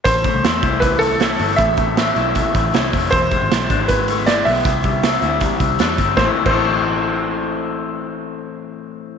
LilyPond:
<<
  \new Staff \with { instrumentName = "Upright piano" } { \time 4/4 \key a \minor \tempo 4 = 157 c''2 b'8 a'4. | e''2. r4 | c''2 b'4 d''8 e''8~ | e''2. r4 |
c''16 r8 c''2.~ c''16~ | c''1 | }
  \new Staff \with { instrumentName = "Clean electric guitar" } { \time 4/4 \key a \minor a,8 a8 c'8 e'8 e8 c'8 e'8 c'8 | a,8 a8 c'8 e'8 e8 c'8 e'8 c'8 | e8 gis4 d'16 e'16 gis8 a16 b16 e'8 b8 | c8 g8 c'8 e'8 g8 c'8 d'16 e'16 c'8 |
<a, e a c' e'>16 r8 <a, e a c' e'>2.~ <a, e a c' e'>16~ | <a, e a c' e'>1 | }
  \new Staff \with { instrumentName = "Picked electric bass" } { \clef bass \time 4/4 \key a \minor a,,8. c,16 e,8 c,2 g,,8 | a,,8 a,,4 b,,8. r16 a,,8 c,8 f,,8 | e,,8. gis,,16 b,,8 gis,,2 b,,8 | c,8 c,4 d,8. r16 c,8 e,8 g,,8 |
a,,16 r8 a,,2.~ a,,16~ | a,,1 | }
  \new DrumStaff \with { instrumentName = "Drums" } \drummode { \time 4/4 <hh bd>8 <hh bd>8 <hh sn>8 <hh bd>8 <hh bd>8 hh8 <hh sn>8 hho8 | <hh bd>8 <hh bd>8 <hh sn>8 hh8 <hh bd>8 <hh bd>8 <hh sn>8 <hho bd>8 | <hh bd>8 <hh bd>8 <hh sn>8 <hh bd>8 <hh bd>8 hh8 <hh sn>8 hho8 | <hh bd>8 <hh bd>8 <hh sn>8 hh8 <hh bd>8 <hh bd>8 <hh sn>8 <hh bd>8 |
<bd sn>8. <cymc bd>16 r4 r4 r4 | r4 r4 r4 r4 | }
>>